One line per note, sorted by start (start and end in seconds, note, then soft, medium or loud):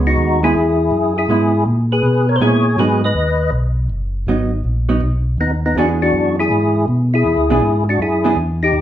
0.00 0.17 C#2 medium
0.00 0.38 G#3 medium
0.00 0.38 B3 medium
0.07 0.41 D#4 medium
0.07 0.41 F#4 medium
0.17 0.54 D#2 medium
0.43 0.54 G#3 medium
0.43 0.54 B3 medium
0.43 0.55 E4 medium
0.43 1.13 E4 medium
0.43 1.17 G#4 loud
0.55 0.91 E2 medium
0.91 1.28 F#2 medium
1.18 1.64 E4 medium
1.18 1.64 G#4 medium
1.29 1.65 G#2 medium
1.29 1.51 G#3 medium
1.29 1.52 B3 medium
1.29 1.52 E4 medium
1.66 2.02 A#2 medium
1.92 2.27 G#4 medium
1.92 2.30 B4 medium
2.03 2.39 B2 medium
2.29 2.36 A#4 medium
2.29 2.36 C#5 medium
2.36 2.41 C5 medium
2.40 2.77 A#2 medium
2.40 2.63 G#3 medium
2.40 2.63 B3 medium
2.40 2.63 E4 medium
2.40 2.76 G#4 medium
2.40 2.80 C#5 medium
2.77 3.14 G#2 medium
2.77 3.00 F#3 medium
2.77 3.00 B3 medium
2.77 3.01 D#4 medium
2.77 3.01 G#4 medium
2.77 3.02 B4 medium
3.04 3.51 B4 medium
3.04 3.50 D#5 medium
3.14 3.51 D#2 medium
3.52 3.88 B1 medium
3.90 4.26 F#1 medium
4.27 4.63 G#1 medium
4.27 4.50 F#3 medium
4.27 4.50 B3 medium
4.27 4.50 D#4 medium
4.64 5.00 A#1 medium
4.89 5.00 F#3 soft
4.89 5.00 B3 medium
4.89 5.01 D#4 medium
5.01 5.37 B1 medium
5.38 5.75 D#2 medium
5.38 5.51 B3 medium
5.38 5.51 D#4 medium
5.66 5.77 B3 medium
5.66 5.77 D#4 medium
5.75 6.12 E2 medium
5.75 6.81 E3 medium
5.75 6.81 B3 medium
5.75 6.81 D4 medium
5.75 5.89 D4 medium
5.75 5.89 F#4 medium
5.75 6.81 G#4 medium
6.02 6.36 D4 medium
6.02 6.36 F#4 medium
6.13 6.49 F#2 medium
6.40 6.85 E4 medium
6.40 6.86 G#4 loud
6.50 6.87 G#2 medium
6.88 7.24 B2 medium
7.14 7.83 E4 medium
7.14 7.84 G#4 medium
7.25 7.37 E2 medium
7.38 7.50 D2 medium
7.50 7.61 B1 medium
7.50 7.61 E3 medium
7.50 7.62 B3 medium
7.50 7.62 D4 medium
7.50 7.62 G#4 medium
7.62 7.98 G#2 medium
7.89 8.00 D4 medium
7.89 8.00 F#4 medium
7.99 8.36 F#2 medium
7.99 8.35 E4 medium
7.99 8.36 G#4 loud
8.24 8.36 E3 medium
8.24 8.36 B3 medium
8.24 8.36 D4 medium
8.24 8.36 G#4 medium
8.36 8.73 E2 medium
8.63 8.81 D#4 medium
8.63 8.81 G4 medium
8.73 8.81 D#2 medium